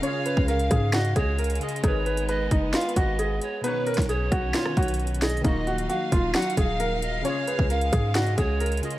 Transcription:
Already playing: F5
0.00 C#3 G#3 C#4 C#5, closed hi-hat
0.04 F4 G#4
0.26 B4, closed hi-hat
0.37 C#2, kick
0.48 A#4 F5, closed hi-hat
0.60 closed hi-hat
0.71 G#2 G#4, kick, closed hi-hat
0.93 F#4 D#5, snare, closed hi-hat
1.05 closed hi-hat
1.16 C#2 G#4 C#5, kick, closed hi-hat
1.38 A#4, closed hi-hat
1.44 closed hi-hat
1.50 closed hi-hat
1.55 closed hi-hat
1.60 C#3 C#4 F4 G#4 D#5, closed hi-hat
1.69 closed hi-hat
1.76 closed hi-hat
1.81 G#1 G#3 B3 D#4 G#4 C#5, kick, closed hi-hat
1.86 A#4 B4
2.06 B4, closed hi-hat
2.17 closed hi-hat
2.29 B4 D#5, closed hi-hat
2.51 F#1 D#4, kick, closed hi-hat
2.74 F4 F5, snare, closed hi-hat
2.81 closed hi-hat
2.89 closed hi-hat
2.96 G#1 F#4 D#5, kick, closed hi-hat
3.19 G#4, closed hi-hat
3.41 C#5, closed hi-hat
3.61 B2 D#3 B3 C#4 B4, closed hi-hat
3.66 D#4 C#5
3.87 A#4, closed hi-hat
3.94 B1, kick, snare, closed hi-hat
4.02 closed hi-hat
4.09 G#4 C#5, closed hi-hat
4.32 B1 F#4, kick, cross-stick, closed hi-hat
4.54 F4, snare, closed hi-hat
4.65 cross-stick
4.77 B1 F#4, kick, closed hi-hat
4.83 closed hi-hat
4.88 closed hi-hat
4.94 closed hi-hat
4.99 closed hi-hat
5.07 closed hi-hat
5.14 closed hi-hat
5.22 G#4 D#5, snare, closed hi-hat, open hi-hat
5.29 closed hi-hat
5.37 closed hi-hat
5.42 D#1 D#3 F#3 A#3 D#4 D#5 F5, kick, closed hi-hat
5.46 F4 F#4
5.67 F#4, closed hi-hat
5.78 closed hi-hat
5.90 F#4 F5, closed hi-hat
6.12 D#1 F4, kick, closed hi-hat
6.35 F#4 F#5, snare, closed hi-hat
6.42 closed hi-hat
6.50 closed hi-hat
6.57 D#1 G#4 F5, kick, closed hi-hat
6.80 A#4, closed hi-hat
7.02 D#5, closed hi-hat
7.22 C#3 G#3 C#4 C#5, closed hi-hat
7.26 F4 G#4
7.48 B4, closed hi-hat
7.59 C#2, kick
7.70 A#4 F5, closed hi-hat
7.81 closed hi-hat
7.92 G#2 G#4, kick, closed hi-hat
8.15 F#4 D#5, snare, closed hi-hat
8.27 closed hi-hat
8.38 C#2 G#4 C#5, kick, closed hi-hat
8.60 A#4, closed hi-hat
8.66 closed hi-hat
8.72 closed hi-hat
8.77 closed hi-hat
8.82 C#3 C#4 F4 G#4 D#5, closed hi-hat
8.90 closed hi-hat

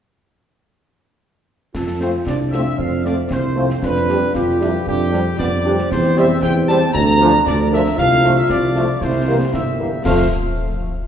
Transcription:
1.75 F2 F4 A4, concert bass drum, snare, crash
1.87 snare
2.00 A3 C4 F4 C5, snare
2.26 C2 D4 D5, concert bass drum, snare
2.51 A3 C4 F4 E5, snare
2.78 F2 C4 F5, concert bass drum
3.04 A3 C4 F4 D5, snare
3.30 C2 C5, concert bass drum, snare
3.55 A3 C4 F4
3.70 snare
3.82 F2 D4 B4, concert bass drum, snare
3.96 snare
4.07 G3 D4 G4, snare
4.34 F2 F4 G4, concert bass drum, snare
4.59 G3 D4 E4 G4, snare
4.86 F2 D4 G4, concert bass drum
5.11 G3 C4 D4 G4, snare
5.38 F2 B3 D5, concert bass drum, snare
5.65 G3 C4 D4 G4
5.78 snare
5.89 E2 C5, concert bass drum, snare, crash
6.04 snare
6.16 G3 C4 G4 E5, snare
6.41 E2 G5, concert bass drum, snare
6.68 G3 C4 G4 A5, snare
6.93 D2 D4 A#5, concert bass drum
7.20 F3 D4 F4 A#4, snare
7.45 D2 D5, concert bass drum, snare
7.71 F3 D4 F4 A#4 E5
7.86 snare
7.98 C2 F4 F5, concert bass drum, snare
8.11 snare
8.24 F3 A3 F4 A4, snare
8.38 E5
8.50 C2 D5, concert bass drum, snare
8.75 F3 A3 F4 A4, snare
9.01 C2 E4 C5, concert bass drum, snare
9.27 E3 G3 A#3 E4 G4 A#4
9.53 G1 E4 E5, concert bass drum, snare
9.79 E3 G3 A#3 E4 A#4
10.05 F2 F3 A3 F4 C5 F5, concert bass drum, snare, crash

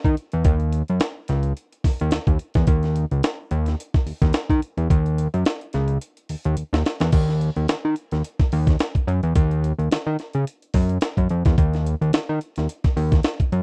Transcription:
0.04 D#3, kick, closed hi-hat
0.17 closed hi-hat
0.32 E2, closed hi-hat
0.44 D#2, kick, closed hi-hat
0.60 closed hi-hat
0.72 closed hi-hat
0.88 F#2, closed hi-hat
1.00 snare, closed hi-hat
1.28 C#2, snare, closed hi-hat
1.43 closed hi-hat
1.57 closed hi-hat
1.72 closed hi-hat
1.84 D#2, kick, snare, open hi-hat
2.00 D#2, closed hi-hat
2.11 D#2, snare, closed hi-hat
2.27 D#2, kick, closed hi-hat
2.39 closed hi-hat
2.54 E2, kick, snare, closed hi-hat
2.67 D#2, kick, closed hi-hat
2.83 snare, closed hi-hat
2.96 closed hi-hat
3.11 C#2, closed hi-hat
3.23 snare, closed hi-hat
3.51 D#2, closed hi-hat
3.66 snare, closed hi-hat
3.80 closed hi-hat
3.94 kick, snare, closed hi-hat
4.06 D#2, open hi-hat
4.22 D#2, kick, snare, closed hi-hat
4.33 snare, closed hi-hat
4.50 D#3, kick, closed hi-hat
4.62 closed hi-hat
4.77 E2, closed hi-hat
4.90 D#2, kick, closed hi-hat
5.06 closed hi-hat
5.18 closed hi-hat
5.34 F#2, closed hi-hat
5.45 snare, closed hi-hat
5.61 closed hi-hat
5.73 C#2, snare, closed hi-hat
5.88 closed hi-hat
6.01 closed hi-hat
6.17 closed hi-hat
6.29 D#2, open hi-hat
6.44 D#2, closed hi-hat
6.57 D#2, closed hi-hat
6.73 D#2, snare, closed hi-hat
6.86 snare, closed hi-hat
7.00 E2, snare, closed hi-hat
7.12 D#2, kick, closed hi-hat, crash
7.28 snare, closed hi-hat
7.41 closed hi-hat
7.56 D#2, closed hi-hat
7.68 D#3, snare, closed hi-hat
7.85 D#3
7.96 closed hi-hat
8.11 D#2, snare, closed hi-hat
8.24 closed hi-hat
8.39 kick, snare, closed hi-hat
8.52 D#2, open hi-hat
8.67 kick, snare, closed hi-hat
8.79 snare, closed hi-hat
8.95 kick, closed hi-hat
9.07 F#2, closed hi-hat
9.23 E2, closed hi-hat
9.35 D#2, kick, closed hi-hat
9.51 closed hi-hat
9.64 closed hi-hat
9.78 D#2, closed hi-hat
9.91 D#3, snare, closed hi-hat
10.06 D#3
10.19 snare, closed hi-hat
10.33 C#3, closed hi-hat
10.47 closed hi-hat
10.62 closed hi-hat
10.74 F#2, kick, snare, open hi-hat
10.89 closed hi-hat
11.01 snare, closed hi-hat
11.17 F#2, kick, closed hi-hat
11.29 F2, closed hi-hat
11.45 E2, kick, snare, closed hi-hat
11.58 D#2, kick, closed hi-hat
11.73 snare, closed hi-hat
11.86 closed hi-hat
12.01 D#2, closed hi-hat
12.13 D#3, snare, closed hi-hat
12.29 D#3
12.41 closed hi-hat
12.56 D#2, snare, closed hi-hat
12.69 closed hi-hat
12.84 kick, snare, closed hi-hat
12.97 D#2, open hi-hat
13.12 kick, snare, closed hi-hat
13.23 snare, closed hi-hat
13.40 kick, closed hi-hat
13.52 F#2, closed hi-hat

